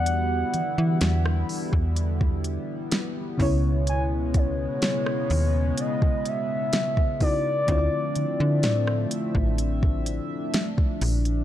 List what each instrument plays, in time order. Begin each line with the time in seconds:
Already playing: fm bass E2, analog synth pad D3 G3 B3 E4, fm electric piano E3 B3 F#4 G4 D5, soft synth lead F#5
0.06 closed hi-hat
0.54 fm bass E3, closed hi-hat
0.78 fm bass E3
1.01 fm bass E2, snare, closed hi-hat
1.26 cross-stick
1.49 open hi-hat
1.73 fm bass E2, kick
1.96 closed hi-hat
2.21 kick
2.44 closed hi-hat
2.92 snare, closed hi-hat
3.38 fm bass C#2, analog synth pad B2 C#3 G#3 B3, fm electric piano C#3 B3 C#4 E4, kick, open hi-hat
3.42 fm electric piano C#5
3.87 soft synth lead G#5, closed hi-hat
4.34 soft synth lead C#5, kick, closed hi-hat
4.82 snare, closed hi-hat
5.06 cross-stick
5.30 fm bass D#2, open hi-hat
5.78 soft synth lead D#5, closed hi-hat
6.02 kick
6.25 soft synth lead E5, closed hi-hat
6.73 snare, closed hi-hat
6.97 kick
7.20 fm electric piano C#3 B3 D#4 E4 F#4, soft synth lead D5, kick, open hi-hat
7.67 fm bass D2, fm electric piano D3 C4 E4 F4, analog synth pad F3 A3 C4 D4 E5, kick, closed hi-hat
7.71 fm electric piano C#5
7.78 fm electric piano D5
8.15 fm bass D3, closed hi-hat
8.40 fm bass D3
8.63 fm bass A2, snare, closed hi-hat
8.87 cross-stick
9.11 closed hi-hat
9.35 fm bass A1, kick
9.58 closed hi-hat
9.83 kick
10.06 closed hi-hat
10.54 snare, closed hi-hat
10.78 kick
11.01 fm bass A#1, closed hi-hat, open hi-hat
11.25 closed hi-hat